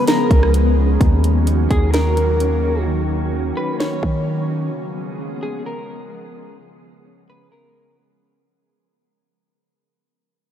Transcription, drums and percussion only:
0, 0, Header, 1, 2, 480
1, 0, Start_track
1, 0, Key_signature, -6, "minor"
1, 0, Tempo, 465116
1, 1039, Time_signature, 4, 2, 24, 8
1, 10853, End_track
2, 0, Start_track
2, 0, Title_t, "Drums"
2, 77, Note_on_c, 9, 42, 73
2, 85, Note_on_c, 9, 38, 118
2, 180, Note_off_c, 9, 42, 0
2, 188, Note_off_c, 9, 38, 0
2, 317, Note_on_c, 9, 36, 101
2, 320, Note_on_c, 9, 42, 73
2, 420, Note_off_c, 9, 36, 0
2, 423, Note_off_c, 9, 42, 0
2, 444, Note_on_c, 9, 37, 106
2, 547, Note_off_c, 9, 37, 0
2, 559, Note_on_c, 9, 42, 90
2, 662, Note_off_c, 9, 42, 0
2, 1039, Note_on_c, 9, 36, 113
2, 1040, Note_on_c, 9, 42, 73
2, 1142, Note_off_c, 9, 36, 0
2, 1143, Note_off_c, 9, 42, 0
2, 1281, Note_on_c, 9, 42, 74
2, 1384, Note_off_c, 9, 42, 0
2, 1518, Note_on_c, 9, 42, 81
2, 1621, Note_off_c, 9, 42, 0
2, 1760, Note_on_c, 9, 36, 98
2, 1761, Note_on_c, 9, 42, 71
2, 1864, Note_off_c, 9, 36, 0
2, 1864, Note_off_c, 9, 42, 0
2, 1998, Note_on_c, 9, 42, 73
2, 2005, Note_on_c, 9, 38, 121
2, 2101, Note_off_c, 9, 42, 0
2, 2109, Note_off_c, 9, 38, 0
2, 2241, Note_on_c, 9, 42, 73
2, 2344, Note_off_c, 9, 42, 0
2, 2480, Note_on_c, 9, 42, 84
2, 2583, Note_off_c, 9, 42, 0
2, 3926, Note_on_c, 9, 38, 117
2, 4029, Note_off_c, 9, 38, 0
2, 4158, Note_on_c, 9, 36, 93
2, 4261, Note_off_c, 9, 36, 0
2, 10853, End_track
0, 0, End_of_file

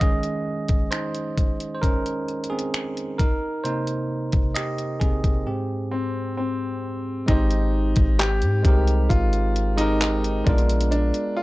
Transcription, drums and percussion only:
0, 0, Header, 1, 2, 480
1, 0, Start_track
1, 0, Key_signature, -4, "major"
1, 0, Tempo, 909091
1, 7, Time_signature, 4, 2, 24, 8
1, 6035, End_track
2, 0, Start_track
2, 0, Title_t, "Drums"
2, 6, Note_on_c, 9, 36, 105
2, 8, Note_on_c, 9, 42, 59
2, 59, Note_off_c, 9, 36, 0
2, 60, Note_off_c, 9, 42, 0
2, 122, Note_on_c, 9, 42, 45
2, 175, Note_off_c, 9, 42, 0
2, 361, Note_on_c, 9, 42, 47
2, 365, Note_on_c, 9, 36, 93
2, 414, Note_off_c, 9, 42, 0
2, 418, Note_off_c, 9, 36, 0
2, 484, Note_on_c, 9, 42, 73
2, 488, Note_on_c, 9, 26, 104
2, 536, Note_off_c, 9, 42, 0
2, 541, Note_off_c, 9, 26, 0
2, 605, Note_on_c, 9, 42, 44
2, 657, Note_off_c, 9, 42, 0
2, 726, Note_on_c, 9, 36, 78
2, 728, Note_on_c, 9, 42, 63
2, 779, Note_off_c, 9, 36, 0
2, 781, Note_off_c, 9, 42, 0
2, 846, Note_on_c, 9, 42, 52
2, 899, Note_off_c, 9, 42, 0
2, 966, Note_on_c, 9, 36, 76
2, 969, Note_on_c, 9, 42, 60
2, 1019, Note_off_c, 9, 36, 0
2, 1022, Note_off_c, 9, 42, 0
2, 1087, Note_on_c, 9, 42, 42
2, 1140, Note_off_c, 9, 42, 0
2, 1206, Note_on_c, 9, 42, 39
2, 1259, Note_off_c, 9, 42, 0
2, 1287, Note_on_c, 9, 42, 53
2, 1340, Note_off_c, 9, 42, 0
2, 1366, Note_on_c, 9, 42, 68
2, 1419, Note_off_c, 9, 42, 0
2, 1446, Note_on_c, 9, 42, 61
2, 1448, Note_on_c, 9, 26, 99
2, 1499, Note_off_c, 9, 42, 0
2, 1501, Note_off_c, 9, 26, 0
2, 1569, Note_on_c, 9, 42, 47
2, 1621, Note_off_c, 9, 42, 0
2, 1687, Note_on_c, 9, 36, 97
2, 1689, Note_on_c, 9, 42, 66
2, 1739, Note_off_c, 9, 36, 0
2, 1741, Note_off_c, 9, 42, 0
2, 1928, Note_on_c, 9, 42, 60
2, 1980, Note_off_c, 9, 42, 0
2, 2044, Note_on_c, 9, 42, 45
2, 2097, Note_off_c, 9, 42, 0
2, 2283, Note_on_c, 9, 42, 48
2, 2287, Note_on_c, 9, 36, 98
2, 2336, Note_off_c, 9, 42, 0
2, 2340, Note_off_c, 9, 36, 0
2, 2405, Note_on_c, 9, 42, 70
2, 2410, Note_on_c, 9, 26, 103
2, 2458, Note_off_c, 9, 42, 0
2, 2463, Note_off_c, 9, 26, 0
2, 2526, Note_on_c, 9, 42, 45
2, 2579, Note_off_c, 9, 42, 0
2, 2647, Note_on_c, 9, 36, 82
2, 2648, Note_on_c, 9, 42, 61
2, 2700, Note_off_c, 9, 36, 0
2, 2701, Note_off_c, 9, 42, 0
2, 2767, Note_on_c, 9, 36, 88
2, 2767, Note_on_c, 9, 42, 49
2, 2820, Note_off_c, 9, 36, 0
2, 2820, Note_off_c, 9, 42, 0
2, 3845, Note_on_c, 9, 42, 65
2, 3846, Note_on_c, 9, 36, 108
2, 3898, Note_off_c, 9, 42, 0
2, 3899, Note_off_c, 9, 36, 0
2, 3963, Note_on_c, 9, 42, 51
2, 4016, Note_off_c, 9, 42, 0
2, 4202, Note_on_c, 9, 42, 52
2, 4206, Note_on_c, 9, 36, 114
2, 4255, Note_off_c, 9, 42, 0
2, 4259, Note_off_c, 9, 36, 0
2, 4326, Note_on_c, 9, 42, 75
2, 4331, Note_on_c, 9, 39, 111
2, 4379, Note_off_c, 9, 42, 0
2, 4383, Note_off_c, 9, 39, 0
2, 4445, Note_on_c, 9, 42, 51
2, 4497, Note_off_c, 9, 42, 0
2, 4566, Note_on_c, 9, 36, 89
2, 4568, Note_on_c, 9, 42, 68
2, 4619, Note_off_c, 9, 36, 0
2, 4621, Note_off_c, 9, 42, 0
2, 4686, Note_on_c, 9, 42, 57
2, 4739, Note_off_c, 9, 42, 0
2, 4806, Note_on_c, 9, 36, 86
2, 4810, Note_on_c, 9, 42, 63
2, 4859, Note_off_c, 9, 36, 0
2, 4863, Note_off_c, 9, 42, 0
2, 4926, Note_on_c, 9, 42, 45
2, 4979, Note_off_c, 9, 42, 0
2, 5047, Note_on_c, 9, 42, 68
2, 5100, Note_off_c, 9, 42, 0
2, 5165, Note_on_c, 9, 42, 82
2, 5218, Note_off_c, 9, 42, 0
2, 5286, Note_on_c, 9, 42, 62
2, 5288, Note_on_c, 9, 39, 107
2, 5339, Note_off_c, 9, 42, 0
2, 5341, Note_off_c, 9, 39, 0
2, 5408, Note_on_c, 9, 42, 54
2, 5461, Note_off_c, 9, 42, 0
2, 5526, Note_on_c, 9, 36, 111
2, 5527, Note_on_c, 9, 42, 48
2, 5579, Note_off_c, 9, 36, 0
2, 5579, Note_off_c, 9, 42, 0
2, 5587, Note_on_c, 9, 42, 57
2, 5639, Note_off_c, 9, 42, 0
2, 5647, Note_on_c, 9, 42, 70
2, 5699, Note_off_c, 9, 42, 0
2, 5706, Note_on_c, 9, 42, 77
2, 5758, Note_off_c, 9, 42, 0
2, 5765, Note_on_c, 9, 42, 64
2, 5818, Note_off_c, 9, 42, 0
2, 5882, Note_on_c, 9, 42, 49
2, 5935, Note_off_c, 9, 42, 0
2, 6035, End_track
0, 0, End_of_file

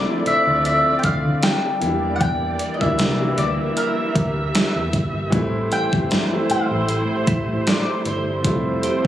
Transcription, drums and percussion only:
0, 0, Header, 1, 2, 480
1, 0, Start_track
1, 0, Tempo, 779221
1, 1359, Time_signature, 4, 2, 24, 8
1, 5588, End_track
2, 0, Start_track
2, 0, Title_t, "Drums"
2, 161, Note_on_c, 9, 42, 68
2, 222, Note_off_c, 9, 42, 0
2, 401, Note_on_c, 9, 42, 75
2, 463, Note_off_c, 9, 42, 0
2, 637, Note_on_c, 9, 42, 77
2, 639, Note_on_c, 9, 36, 107
2, 699, Note_off_c, 9, 42, 0
2, 701, Note_off_c, 9, 36, 0
2, 878, Note_on_c, 9, 42, 78
2, 882, Note_on_c, 9, 38, 121
2, 940, Note_off_c, 9, 42, 0
2, 944, Note_off_c, 9, 38, 0
2, 1118, Note_on_c, 9, 42, 65
2, 1180, Note_off_c, 9, 42, 0
2, 1359, Note_on_c, 9, 36, 117
2, 1360, Note_on_c, 9, 42, 75
2, 1421, Note_off_c, 9, 36, 0
2, 1421, Note_off_c, 9, 42, 0
2, 1598, Note_on_c, 9, 42, 78
2, 1660, Note_off_c, 9, 42, 0
2, 1731, Note_on_c, 9, 36, 88
2, 1792, Note_off_c, 9, 36, 0
2, 1840, Note_on_c, 9, 42, 73
2, 1845, Note_on_c, 9, 38, 101
2, 1902, Note_off_c, 9, 42, 0
2, 1907, Note_off_c, 9, 38, 0
2, 2081, Note_on_c, 9, 42, 71
2, 2142, Note_off_c, 9, 42, 0
2, 2321, Note_on_c, 9, 42, 72
2, 2382, Note_off_c, 9, 42, 0
2, 2559, Note_on_c, 9, 36, 103
2, 2560, Note_on_c, 9, 42, 78
2, 2621, Note_off_c, 9, 36, 0
2, 2622, Note_off_c, 9, 42, 0
2, 2801, Note_on_c, 9, 42, 77
2, 2805, Note_on_c, 9, 38, 119
2, 2863, Note_off_c, 9, 42, 0
2, 2867, Note_off_c, 9, 38, 0
2, 3039, Note_on_c, 9, 36, 88
2, 3040, Note_on_c, 9, 42, 69
2, 3101, Note_off_c, 9, 36, 0
2, 3101, Note_off_c, 9, 42, 0
2, 3280, Note_on_c, 9, 36, 114
2, 3280, Note_on_c, 9, 42, 73
2, 3341, Note_off_c, 9, 36, 0
2, 3342, Note_off_c, 9, 42, 0
2, 3521, Note_on_c, 9, 42, 77
2, 3583, Note_off_c, 9, 42, 0
2, 3652, Note_on_c, 9, 36, 88
2, 3713, Note_off_c, 9, 36, 0
2, 3763, Note_on_c, 9, 42, 74
2, 3768, Note_on_c, 9, 38, 101
2, 3825, Note_off_c, 9, 42, 0
2, 3830, Note_off_c, 9, 38, 0
2, 4002, Note_on_c, 9, 42, 70
2, 4064, Note_off_c, 9, 42, 0
2, 4241, Note_on_c, 9, 42, 72
2, 4303, Note_off_c, 9, 42, 0
2, 4480, Note_on_c, 9, 42, 81
2, 4481, Note_on_c, 9, 36, 110
2, 4542, Note_off_c, 9, 42, 0
2, 4543, Note_off_c, 9, 36, 0
2, 4724, Note_on_c, 9, 42, 74
2, 4728, Note_on_c, 9, 38, 124
2, 4785, Note_off_c, 9, 42, 0
2, 4789, Note_off_c, 9, 38, 0
2, 4962, Note_on_c, 9, 42, 67
2, 5023, Note_off_c, 9, 42, 0
2, 5202, Note_on_c, 9, 36, 116
2, 5203, Note_on_c, 9, 42, 74
2, 5264, Note_off_c, 9, 36, 0
2, 5264, Note_off_c, 9, 42, 0
2, 5441, Note_on_c, 9, 42, 79
2, 5502, Note_off_c, 9, 42, 0
2, 5588, End_track
0, 0, End_of_file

